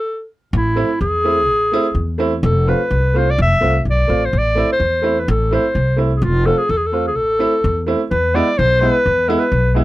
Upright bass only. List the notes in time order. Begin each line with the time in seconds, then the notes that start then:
0.53 A1
1.01 E2
1.47 A1
1.95 E2
2.43 F1
2.91 C2
3.38 F1
3.61 C2
3.85 B1
4.09 A1
4.33 A1
4.80 E2
5.28 A1
5.75 C2
6.22 F1
6.69 E2
7.17 A1
7.64 E2
8.11 E2
8.59 B1
9.06 E2
9.52 B1